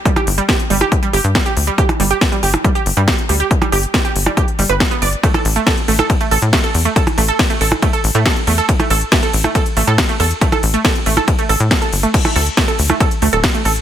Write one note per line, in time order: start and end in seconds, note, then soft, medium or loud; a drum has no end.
0.05 0.10 G3 medium
0.05 kick loud
0.05 closed hi-hat medium
0.16 0.23 G4 medium
0.16 closed hi-hat soft
0.16 percussion blips medium
0.27 0.40 G1 loud
0.27 open hi-hat loud
0.38 0.42 G3 medium
0.38 closed hi-hat soft
0.49 0.55 G4 medium
0.49 kick loud
0.49 snare loud
0.49 closed hi-hat medium
0.59 closed hi-hat soft
0.70 0.84 G1 medium
0.70 0.75 G3 medium
0.70 open hi-hat loud
0.81 0.88 G4 medium
0.81 closed hi-hat soft
0.81 percussion blips medium
0.92 kick loud
0.92 closed hi-hat medium
1.03 1.07 G3 medium
1.03 closed hi-hat soft
1.13 1.20 G1 medium
1.13 1.20 G4 medium
1.13 open hi-hat loud
1.24 1.38 G2 loud
1.24 closed hi-hat soft
1.35 1.40 G3 medium
1.35 kick loud
1.35 snare loud
1.35 closed hi-hat medium
1.46 1.53 G4 medium
1.46 closed hi-hat soft
1.57 1.70 D2 medium
1.57 open hi-hat loud
1.67 1.72 G3 medium
1.67 closed hi-hat soft
1.78 1.85 G4 medium
1.78 kick loud
1.78 closed hi-hat medium
1.89 closed hi-hat soft
1.89 percussion blips medium
2.00 2.13 G1 loud
2.00 2.04 G3 medium
2.00 open hi-hat loud
2.11 2.17 G4 medium
2.11 closed hi-hat soft
2.21 kick loud
2.21 snare loud
2.21 closed hi-hat medium
2.32 2.37 G3 medium
2.32 closed hi-hat soft
2.43 2.56 G1 medium
2.43 2.50 G4 medium
2.43 open hi-hat loud
2.54 closed hi-hat soft
2.54 percussion blips medium
2.64 2.69 G3 medium
2.64 kick loud
2.64 closed hi-hat medium
2.75 2.82 G4 medium
2.75 closed hi-hat soft
2.86 2.93 G1 medium
2.86 open hi-hat loud
2.97 3.10 G2 loud
2.97 3.01 G3 medium
2.97 closed hi-hat soft
3.08 3.14 G4 medium
3.08 kick loud
3.08 snare loud
3.08 closed hi-hat medium
3.18 closed hi-hat soft
3.29 3.43 D2 medium
3.29 3.34 G3 medium
3.29 open hi-hat loud
3.40 3.47 G4 medium
3.40 closed hi-hat soft
3.51 kick loud
3.51 closed hi-hat medium
3.62 3.66 G3 medium
3.62 closed hi-hat soft
3.62 percussion blips medium
3.72 3.86 G1 medium
3.72 3.79 G4 medium
3.72 open hi-hat loud
3.83 closed hi-hat soft
3.94 3.98 G3 medium
3.94 kick loud
3.94 snare loud
3.94 closed hi-hat medium
4.05 4.12 G4 medium
4.05 closed hi-hat soft
4.16 4.29 G1 medium
4.16 open hi-hat loud
4.26 4.31 G3 medium
4.26 closed hi-hat soft
4.26 percussion blips medium
4.37 4.44 G4 medium
4.37 kick loud
4.37 closed hi-hat medium
4.48 closed hi-hat soft
4.59 4.65 G1 loud
4.59 4.61 G3 medium
4.59 open hi-hat loud
4.69 4.83 G1 medium
4.69 4.74 B4 medium
4.69 closed hi-hat soft
4.80 kick loud
4.80 snare loud
4.80 closed hi-hat medium
4.91 4.94 B3 loud
4.91 closed hi-hat soft
5.02 5.15 G1 medium
5.02 5.09 D5 medium
5.02 open hi-hat loud
5.13 closed hi-hat soft
5.23 5.28 A3 medium
5.23 kick loud
5.23 closed hi-hat medium
5.23 ride medium
5.34 5.41 A4 medium
5.34 closed hi-hat soft
5.34 percussion blips medium
5.45 5.58 A1 loud
5.45 open hi-hat loud
5.56 5.60 A3 medium
5.56 closed hi-hat soft
5.67 5.73 A4 medium
5.67 kick loud
5.67 snare loud
5.67 closed hi-hat medium
5.67 ride medium
5.77 closed hi-hat soft
5.88 6.02 A1 medium
5.88 5.93 A3 medium
5.88 open hi-hat loud
5.99 6.06 A4 medium
5.99 closed hi-hat soft
5.99 percussion blips medium
6.10 kick loud
6.10 closed hi-hat medium
6.10 ride medium
6.21 6.25 A3 medium
6.21 closed hi-hat soft
6.31 6.38 A1 medium
6.31 6.38 A4 medium
6.31 open hi-hat loud
6.42 6.56 A2 loud
6.42 closed hi-hat soft
6.53 6.57 A3 medium
6.53 kick loud
6.53 snare loud
6.53 closed hi-hat medium
6.53 ride medium
6.64 6.71 A4 medium
6.64 closed hi-hat soft
6.74 6.88 E2 medium
6.74 open hi-hat loud
6.85 6.90 A3 medium
6.85 closed hi-hat soft
6.96 7.03 A4 medium
6.96 kick loud
6.96 closed hi-hat medium
6.96 ride medium
7.07 closed hi-hat soft
7.07 percussion blips medium
7.18 7.31 A1 loud
7.18 7.22 A3 medium
7.18 open hi-hat loud
7.28 7.35 A4 medium
7.28 closed hi-hat soft
7.39 kick loud
7.39 snare loud
7.39 closed hi-hat medium
7.39 ride medium
7.50 7.55 A3 medium
7.50 closed hi-hat soft
7.61 7.74 A1 medium
7.61 7.68 A4 medium
7.61 open hi-hat loud
7.72 closed hi-hat soft
7.72 percussion blips medium
7.82 7.87 A3 medium
7.82 kick loud
7.82 closed hi-hat medium
7.82 ride medium
7.93 8.00 A4 medium
7.93 closed hi-hat soft
8.04 8.11 A1 medium
8.04 open hi-hat loud
8.15 8.28 A2 loud
8.15 8.19 A3 medium
8.15 closed hi-hat soft
8.26 8.32 A4 medium
8.26 kick loud
8.26 snare loud
8.26 closed hi-hat medium
8.26 ride medium
8.36 closed hi-hat soft
8.47 8.61 E2 medium
8.47 8.52 A3 medium
8.47 open hi-hat loud
8.58 8.65 A4 medium
8.58 closed hi-hat soft
8.69 kick loud
8.69 closed hi-hat medium
8.69 ride medium
8.80 8.84 A3 medium
8.80 closed hi-hat soft
8.80 percussion blips medium
8.90 9.04 A1 loud
8.90 8.97 A4 medium
8.90 open hi-hat loud
9.01 closed hi-hat soft
9.12 9.17 A3 medium
9.12 kick loud
9.12 snare loud
9.12 closed hi-hat medium
9.12 ride medium
9.23 9.30 A4 medium
9.23 closed hi-hat soft
9.33 9.47 A1 medium
9.33 open hi-hat loud
9.44 9.49 A3 medium
9.44 closed hi-hat soft
9.44 percussion blips medium
9.55 9.62 A4 medium
9.55 kick loud
9.55 closed hi-hat medium
9.55 ride medium
9.66 closed hi-hat soft
9.77 9.83 A1 medium
9.77 9.81 A3 medium
9.77 open hi-hat loud
9.87 10.01 A2 loud
9.87 9.94 A4 medium
9.87 closed hi-hat soft
9.98 kick loud
9.98 snare loud
9.98 closed hi-hat medium
9.98 ride medium
10.09 10.14 A3 medium
10.09 closed hi-hat soft
10.20 10.33 E2 medium
10.20 10.27 A4 medium
10.20 open hi-hat loud
10.31 closed hi-hat soft
10.41 10.46 A3 medium
10.41 kick loud
10.41 closed hi-hat medium
10.41 ride medium
10.52 10.59 A4 medium
10.52 closed hi-hat soft
10.52 percussion blips medium
10.63 10.76 A1 loud
10.63 open hi-hat loud
10.74 10.78 A3 medium
10.74 closed hi-hat soft
10.85 10.91 A4 medium
10.85 kick loud
10.85 snare loud
10.85 closed hi-hat medium
10.85 ride medium
10.95 closed hi-hat soft
11.06 11.20 A1 medium
11.06 11.11 A3 medium
11.06 open hi-hat loud
11.17 11.24 A4 medium
11.17 closed hi-hat soft
11.17 percussion blips medium
11.28 kick loud
11.28 closed hi-hat medium
11.28 ride medium
11.39 11.43 A3 medium
11.39 closed hi-hat soft
11.49 11.56 A1 medium
11.49 11.56 A4 medium
11.49 open hi-hat loud
11.60 11.74 A2 loud
11.60 closed hi-hat soft
11.71 11.75 A3 medium
11.71 kick loud
11.71 snare loud
11.71 closed hi-hat medium
11.71 ride medium
11.82 11.89 A4 medium
11.82 closed hi-hat soft
11.93 12.06 G1 medium
11.93 open hi-hat loud
12.03 12.08 A3 medium
12.03 closed hi-hat soft
12.14 kick loud
12.14 closed hi-hat medium
12.14 crash medium
12.14 ride medium
12.25 12.29 A3 medium
12.25 closed hi-hat soft
12.25 percussion blips medium
12.36 12.49 D2 loud
12.36 12.42 A4 medium
12.36 open hi-hat loud
12.46 closed hi-hat soft
12.57 12.62 A3 medium
12.57 kick loud
12.57 snare loud
12.57 closed hi-hat medium
12.57 ride medium
12.68 12.75 A4 medium
12.68 closed hi-hat soft
12.79 12.92 D2 medium
12.79 open hi-hat loud
12.90 12.94 A3 medium
12.90 closed hi-hat soft
12.90 percussion blips medium
13.00 13.07 A4 medium
13.00 kick loud
13.00 closed hi-hat medium
13.00 ride medium
13.11 closed hi-hat soft
13.22 13.29 D2 medium
13.22 13.27 A3 medium
13.22 open hi-hat loud
13.33 13.46 D1 loud
13.33 13.40 A4 medium
13.33 closed hi-hat soft
13.44 kick loud
13.44 snare loud
13.44 closed hi-hat medium
13.44 ride medium
13.54 13.59 A3 medium
13.54 closed hi-hat soft
13.65 13.79 A1 medium
13.65 13.72 A4 medium
13.65 open hi-hat loud
13.76 closed hi-hat soft